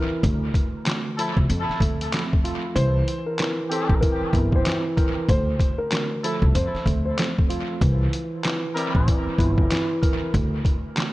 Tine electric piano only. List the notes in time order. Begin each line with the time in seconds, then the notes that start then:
Already playing: E3 C4 E4 A#4
0.23 D2
0.86 D2
1.19 F3
1.50 F2
1.81 A3
2.13 F2
2.44 F4
2.75 E3
3.39 E3
3.70 C4
4.03 E3
4.33 E4
4.65 E3
4.97 A#4
5.28 D2
5.91 D2
6.24 F3
6.56 F2
6.86 A3
7.19 F2
7.50 F4
7.81 E3
8.44 E3
8.76 C4
9.08 E3
9.38 E4
9.70 E3
10.02 A#4
10.33 D2
10.96 D2